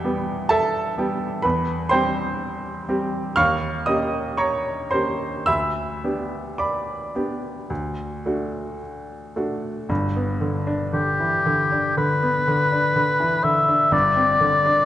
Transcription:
0.00 1.45 E2 soft
0.00 0.05 G4 medium
0.00 0.47 E5 medium
0.00 0.50 G5 medium
0.04 0.94 G3 soft
0.04 0.95 B3 soft
0.04 0.95 G4 soft
0.49 1.40 A4 medium
0.49 1.40 E5 medium
0.49 1.44 A5 medium
0.98 1.41 G3 soft
0.98 1.41 B3 soft
0.98 1.41 G4 soft
1.42 1.90 E2 soft
1.42 1.88 B4 soft
1.42 1.91 B5 medium
1.89 2.85 G3 soft
1.89 2.85 C4 soft
1.89 2.85 G4 soft
1.89 3.33 C5 medium
1.89 3.33 G5 medium
1.89 3.37 C6 medium
2.88 3.34 G3 soft
2.88 3.34 C4 soft
2.88 3.34 G4 soft
3.36 3.86 D#2 soft
3.36 3.84 F5 medium
3.36 3.84 C#6 medium
3.36 3.86 F6 medium
3.86 4.88 A#3 soft
3.86 4.88 C#4 soft
3.86 4.89 G4 soft
3.86 4.35 D#5 soft
3.86 4.38 D#6 medium
4.37 4.88 C#5 soft
4.37 4.88 A#5 soft
4.37 4.91 C#6 medium
4.91 5.44 A#3 soft
4.91 5.44 C#4 soft
4.91 5.44 G4 soft
4.91 5.43 C5 soft
4.91 5.47 C6 medium
5.46 6.02 D2 soft
5.46 6.56 E5 medium
5.46 6.56 B5 medium
5.46 6.59 E6 medium
6.04 7.11 B3 soft
6.04 7.11 D4 soft
6.04 7.12 G4 soft
6.58 8.76 D5 soft
6.58 8.76 B5 soft
6.58 8.80 D6 soft
7.15 7.66 B3 soft
7.15 7.66 D4 soft
7.15 7.66 G4 soft
7.70 8.24 D2 soft
8.26 9.32 A3 soft
8.26 9.32 D4 soft
8.26 9.33 F#4 soft
9.36 9.86 A3 soft
9.36 9.86 D4 soft
9.36 9.86 F#4 soft
9.89 11.93 G1 soft
9.89 11.94 G2 soft
10.16 10.57 B3 soft
10.41 10.83 D3 soft
10.67 11.09 D4 soft
10.93 11.35 D3 soft
10.93 11.94 G4 medium
11.20 11.46 E3 soft
11.46 11.88 D3 soft
11.72 12.13 D4 soft
11.97 12.38 D3 soft
11.97 13.45 B4 medium
12.23 12.62 B3 soft
12.48 12.87 D3 soft
12.72 13.11 D4 soft
12.96 13.35 D3 soft
13.20 13.45 E3 soft
13.44 13.83 D3 soft
13.44 13.94 E5 medium
13.68 13.93 D4 soft
13.91 14.85 G1 soft
13.91 14.85 G2 soft
13.91 14.85 D5 medium
14.16 14.55 C4 soft
14.41 14.80 D3 soft
14.66 14.85 D4 soft

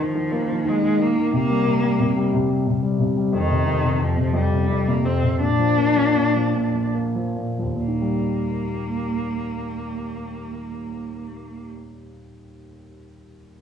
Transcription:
0.00 0.15 D#3 soft
0.00 0.70 F3 medium
0.15 0.47 D#3 soft
0.32 1.29 A#3 medium
0.48 0.64 D#3 soft
0.65 0.81 D#3 soft
0.65 1.03 G#3 medium
0.82 0.98 D#3 soft
0.99 1.14 D#3 soft
0.99 1.33 A#3 medium
1.16 1.32 D#3 soft
1.33 1.64 C3 soft
1.33 2.29 A#3 medium
1.50 1.82 G3 soft
1.66 1.98 C3 soft
1.83 2.15 G3 soft
1.99 2.32 C3 soft
2.16 2.48 G3 soft
2.33 2.65 C3 medium
2.49 2.81 G3 soft
2.67 2.98 C3 soft
2.83 3.15 G3 soft
2.99 3.31 C3 soft
3.16 3.32 G3 soft
3.32 3.65 F2 soft
3.32 4.03 D#3 medium
3.50 3.82 C3 soft
3.66 3.98 F2 soft
3.84 4.15 C3 soft
4.00 4.32 F2 soft
4.00 4.38 F3 medium
4.17 4.49 C3 soft
4.33 4.67 F2 medium
4.33 4.90 G3 medium
4.50 4.85 C3 soft
4.68 5.03 F2 soft
4.86 5.21 C3 soft
4.86 5.07 A#3 medium
5.05 5.39 F2 soft
5.05 5.40 C4 medium
5.23 5.40 C3 soft
5.40 6.14 A#2 soft
5.40 6.91 D4 medium
5.59 5.95 F3 soft
5.78 6.93 A#3 soft
5.96 6.34 F3 soft
6.16 6.53 A#2 soft
6.36 6.73 F3 soft
6.54 7.35 A#2 soft
6.74 7.14 F3 soft
6.95 7.78 A#3 soft
7.15 7.57 F3 soft
7.36 7.73 A#2 soft
7.59 11.46 D#2 soft
7.59 7.80 F3 soft
7.75 11.60 A#2 soft
7.82 11.68 A#3 medium
7.88 11.73 D#3 soft
8.01 11.86 G3 soft

